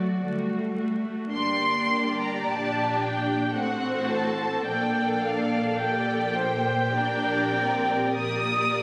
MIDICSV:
0, 0, Header, 1, 6, 480
1, 0, Start_track
1, 0, Key_signature, -2, "minor"
1, 0, Tempo, 1083032
1, 592, Time_signature, 3, 2, 24, 8
1, 592, Tempo, 1149425
1, 1072, Tempo, 1060071
1, 1552, Tempo, 1115242
1, 2032, Tempo, 1136364
1, 2992, Tempo, 1212121
1, 3472, Tempo, 1117318
1, 3764, End_track
2, 0, Start_track
2, 0, Title_t, "Violin section"
2, 0, Program_c, 0, 48
2, 0, Note_on_c, 0, 74, 49
2, 111, Note_off_c, 0, 74, 0
2, 592, Note_on_c, 0, 84, 82
2, 939, Note_off_c, 0, 84, 0
2, 964, Note_on_c, 0, 82, 60
2, 1076, Note_off_c, 0, 82, 0
2, 1078, Note_on_c, 0, 81, 62
2, 1311, Note_on_c, 0, 79, 67
2, 1317, Note_off_c, 0, 81, 0
2, 1551, Note_off_c, 0, 79, 0
2, 1556, Note_on_c, 0, 78, 64
2, 1784, Note_on_c, 0, 81, 68
2, 1789, Note_off_c, 0, 78, 0
2, 2029, Note_on_c, 0, 79, 68
2, 2030, Note_off_c, 0, 81, 0
2, 2269, Note_off_c, 0, 79, 0
2, 2273, Note_on_c, 0, 77, 64
2, 2510, Note_on_c, 0, 79, 73
2, 2516, Note_off_c, 0, 77, 0
2, 3467, Note_on_c, 0, 87, 85
2, 3468, Note_off_c, 0, 79, 0
2, 3764, Note_off_c, 0, 87, 0
2, 3764, End_track
3, 0, Start_track
3, 0, Title_t, "Violin section"
3, 0, Program_c, 1, 48
3, 0, Note_on_c, 1, 66, 35
3, 341, Note_off_c, 1, 66, 0
3, 594, Note_on_c, 1, 67, 45
3, 594, Note_on_c, 1, 74, 47
3, 1535, Note_off_c, 1, 67, 0
3, 1535, Note_off_c, 1, 74, 0
3, 1556, Note_on_c, 1, 72, 49
3, 1557, Note_on_c, 1, 66, 51
3, 2034, Note_off_c, 1, 66, 0
3, 2034, Note_off_c, 1, 72, 0
3, 2035, Note_on_c, 1, 62, 48
3, 2036, Note_on_c, 1, 74, 45
3, 2509, Note_off_c, 1, 62, 0
3, 2510, Note_off_c, 1, 74, 0
3, 2515, Note_on_c, 1, 67, 38
3, 2517, Note_on_c, 1, 74, 48
3, 2749, Note_off_c, 1, 74, 0
3, 2752, Note_on_c, 1, 72, 57
3, 2990, Note_off_c, 1, 67, 0
3, 2991, Note_off_c, 1, 72, 0
3, 2993, Note_on_c, 1, 70, 51
3, 2995, Note_on_c, 1, 74, 51
3, 3471, Note_off_c, 1, 70, 0
3, 3471, Note_off_c, 1, 74, 0
3, 3476, Note_on_c, 1, 70, 45
3, 3476, Note_on_c, 1, 74, 53
3, 3764, Note_off_c, 1, 70, 0
3, 3764, Note_off_c, 1, 74, 0
3, 3764, End_track
4, 0, Start_track
4, 0, Title_t, "Viola section"
4, 0, Program_c, 2, 48
4, 0, Note_on_c, 2, 57, 27
4, 0, Note_on_c, 2, 66, 25
4, 97, Note_off_c, 2, 57, 0
4, 98, Note_off_c, 2, 66, 0
4, 102, Note_on_c, 2, 57, 30
4, 104, Note_on_c, 2, 66, 36
4, 330, Note_off_c, 2, 66, 0
4, 331, Note_off_c, 2, 57, 0
4, 335, Note_on_c, 2, 66, 26
4, 336, Note_on_c, 2, 57, 26
4, 583, Note_off_c, 2, 66, 0
4, 584, Note_off_c, 2, 57, 0
4, 587, Note_on_c, 2, 62, 43
4, 589, Note_on_c, 2, 58, 41
4, 1053, Note_off_c, 2, 62, 0
4, 1054, Note_off_c, 2, 58, 0
4, 1069, Note_on_c, 2, 67, 45
4, 1071, Note_on_c, 2, 62, 47
4, 1547, Note_on_c, 2, 60, 44
4, 1547, Note_on_c, 2, 69, 48
4, 1550, Note_off_c, 2, 67, 0
4, 1551, Note_off_c, 2, 62, 0
4, 2029, Note_off_c, 2, 60, 0
4, 2032, Note_on_c, 2, 58, 50
4, 2974, Note_off_c, 2, 58, 0
4, 2987, Note_on_c, 2, 67, 49
4, 2988, Note_on_c, 2, 62, 51
4, 2989, Note_off_c, 2, 69, 0
4, 3228, Note_on_c, 2, 60, 48
4, 3229, Note_off_c, 2, 62, 0
4, 3470, Note_off_c, 2, 60, 0
4, 3472, Note_on_c, 2, 58, 45
4, 3764, Note_off_c, 2, 58, 0
4, 3764, Note_off_c, 2, 67, 0
4, 3764, End_track
5, 0, Start_track
5, 0, Title_t, "Cello section"
5, 0, Program_c, 3, 48
5, 0, Note_on_c, 3, 54, 41
5, 89, Note_off_c, 3, 54, 0
5, 109, Note_on_c, 3, 55, 40
5, 465, Note_off_c, 3, 55, 0
5, 467, Note_on_c, 3, 57, 34
5, 589, Note_on_c, 3, 43, 48
5, 593, Note_off_c, 3, 57, 0
5, 1054, Note_off_c, 3, 43, 0
5, 1073, Note_on_c, 3, 46, 44
5, 1543, Note_off_c, 3, 46, 0
5, 1551, Note_on_c, 3, 45, 49
5, 2031, Note_off_c, 3, 45, 0
5, 2036, Note_on_c, 3, 46, 50
5, 3457, Note_off_c, 3, 46, 0
5, 3472, Note_on_c, 3, 46, 51
5, 3764, Note_off_c, 3, 46, 0
5, 3764, End_track
6, 0, Start_track
6, 0, Title_t, "Double bass section"
6, 0, Program_c, 4, 48
6, 107, Note_on_c, 4, 38, 38
6, 522, Note_off_c, 4, 38, 0
6, 590, Note_on_c, 4, 31, 41
6, 1054, Note_off_c, 4, 31, 0
6, 1070, Note_on_c, 4, 34, 41
6, 1542, Note_off_c, 4, 34, 0
6, 1549, Note_on_c, 4, 33, 49
6, 2030, Note_off_c, 4, 33, 0
6, 2032, Note_on_c, 4, 34, 48
6, 3456, Note_off_c, 4, 34, 0
6, 3467, Note_on_c, 4, 34, 53
6, 3764, Note_off_c, 4, 34, 0
6, 3764, End_track
0, 0, End_of_file